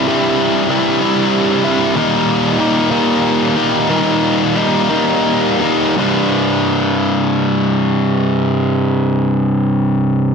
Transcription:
0.06 C2 G2 C3 G3 E4
0.69 G2 C3 G3 E4
1.01 C2 G2 C3 G3 E4
1.64 C3 G3 E4
1.95 D#2 A#2 D#3 G3 A#3 D#4
2.58 D#3 G3 A#3 D#4
2.90 D#2 A#2 D#3 G3 A#3 D#4
3.56 D#3 G3 A#3 D#4
3.88 D#2 A#2 D#3 G3 A#3 D#4
4.55 D#3 G3 A#3 D#4
4.89 D#2 A#2 D#3 G3 A#3 D#4
5.61 D#3 G3 A#3 D#4
5.95 C2 G2
5.99 C3

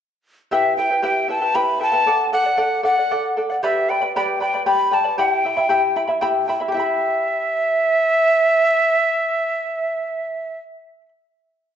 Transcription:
0.51 E4 G4 B4 E5 G5
0.77 E4 B4 E5 G5
0.90 E4 B4 G5
1.02 E4 G4 B4 E5 G5
1.28 E4 B4 E5 G5 A5
1.42 E4 B4 G5
1.54 E4 G4 B4 E5 G5 B5
1.79 E4 B4 E5 G5 A5
1.92 E4 B4 G5
2.06 A4 D5 F#5
2.33 A4 D5 F#5
2.44 D5 F#5
2.57 A4 D5 F#5
2.83 A4 D5 F#5
2.97 D5 F#5
3.11 A4 D5 F#5
3.37 A4 D5 F#5
3.50 D5 F#5
3.63 G4 B4 D5 E5 G5 B5
3.89 B4 D5 G5 B5
4.02 B4 D5 B5
4.16 G4 B4 D5 G5 B5
4.40 B4 D5 G5 B5
4.54 B4 D5 B5
4.66 G4 B4 D5 G5 B5
4.91 B4 D5 G5 A5 B5
5.04 B4 D5 B5
5.18 E4 G4 E5 F#5 G5 B5
5.30 G5
5.45 E4 E5 G5 B5
5.57 E4 E5 B5
5.69 E4 G4 E5 G5 B5
5.96 E4 E5 G5 B5
6.08 E4 E5 B5
6.21 E4 G4 E5 G5 B5
6.48 E4 E5 G5 B5
6.60 E4 E5 B5
6.68 G4 G5
6.73 E4 E5
6.80 B5

